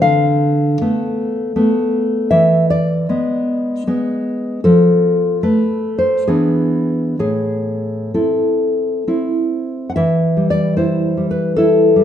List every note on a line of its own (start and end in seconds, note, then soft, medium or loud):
0.02 0.78 D3 medium
0.02 2.28 F5 medium
0.81 1.55 A3 soft
0.81 1.55 B3 soft
1.56 2.29 A3 soft
1.56 2.29 B3 soft
2.31 3.06 E3 soft
2.31 2.68 E5 medium
2.70 4.21 D5 medium
3.09 3.86 G#3 soft
3.09 3.86 B3 soft
3.87 4.60 G#3 soft
3.87 4.60 B3 soft
4.64 5.41 F3 soft
4.64 5.40 A4 medium
5.43 6.24 A3 soft
5.43 5.96 B4 medium
5.98 6.27 C5 medium
6.27 7.17 E3 medium
6.27 7.15 B3 soft
6.27 7.16 D4 soft
6.27 7.15 G#4 medium
7.19 8.11 A2 soft
7.19 8.10 G#4 medium
8.14 9.06 C4 soft
8.14 9.07 E4 soft
8.14 9.03 A4 soft
9.07 9.93 C4 soft
9.07 9.93 E4 soft
9.90 9.95 F#5 soft
9.96 12.04 E3 soft
9.96 10.48 E5 medium
10.37 11.16 G3 soft
10.50 10.76 D5 medium
10.77 11.57 E4 soft
10.77 11.29 C5 medium
11.17 11.95 G3 soft
11.31 11.56 B4 medium
11.56 12.04 E4 soft
11.56 12.04 A4 medium
11.96 12.04 G3 soft